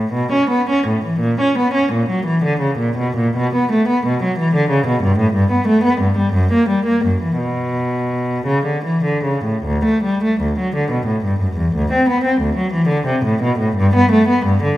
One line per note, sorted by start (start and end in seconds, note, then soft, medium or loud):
0.00 0.11 A2 medium
0.13 0.30 B2 medium
0.32 0.49 C#4 soft
0.50 0.67 B3 soft
0.70 0.86 C#4 soft
0.87 1.04 A2 soft
1.05 1.21 E3 soft
1.20 1.37 A#2 medium
1.40 1.56 C#4 soft
1.58 1.73 B3 soft
1.74 1.90 C#4 soft
1.92 2.08 A#2 soft
2.10 2.25 F#3 soft
2.26 2.42 E3 medium
2.44 2.60 D3 soft
2.61 2.78 C#3 soft
2.79 2.96 A#2 soft
2.98 3.15 B2 soft
3.17 3.34 A#2 soft
3.37 3.53 B2 medium
3.55 3.70 B3 soft
3.72 3.87 A3 medium
3.88 4.04 B3 medium
4.06 4.21 B2 medium
4.23 4.38 F#3 medium
4.39 4.54 E3 medium
4.55 4.71 D3 medium
4.70 4.86 C#3 medium
4.87 5.03 B2 medium
5.03 5.19 G2 medium
5.18 5.35 A2 soft
5.34 5.50 G2 medium
5.51 5.67 B3 medium
5.67 5.84 A3 medium
5.84 6.00 B3 medium
6.01 6.17 G2 medium
6.18 6.34 G3 soft
6.33 6.51 F#2 medium
6.53 6.69 A#3 medium
6.69 6.86 G3 soft
6.86 7.04 A#3 soft
7.05 7.22 F#2 soft
7.22 7.39 E3 soft
7.38 8.44 B2 medium
8.46 8.65 C#3 soft
8.66 8.84 D3 soft
8.85 9.04 E3 soft
9.04 9.25 D3 soft
9.24 9.45 C#3 soft
9.44 9.65 A2 soft
9.65 9.84 D2 medium
9.85 10.03 A3 soft
10.04 10.21 G3 soft
10.24 10.40 A3 soft
10.41 10.57 D2 soft
10.59 10.74 F#3 soft
10.75 10.91 D3 medium
10.91 11.07 B2 soft
11.06 11.23 A2 soft
11.25 11.40 G2 soft
11.41 11.56 F#2 soft
11.57 11.72 E2 soft
11.75 11.90 D2 medium
11.92 12.07 C4 medium
12.09 12.23 B3 medium
12.24 12.39 C4 soft
12.41 12.56 D2 medium
12.57 12.72 F#3 medium
12.73 12.88 E3 medium
12.88 13.04 D3 medium
13.07 13.22 C3 medium
13.25 13.41 A2 medium
13.42 13.59 B2 medium
13.59 13.76 A2 medium
13.77 13.94 G2 medium
13.95 14.11 B3 medium
14.12 14.28 A3 medium
14.28 14.44 B3 medium
14.46 14.61 G2 medium
14.63 14.77 D3 medium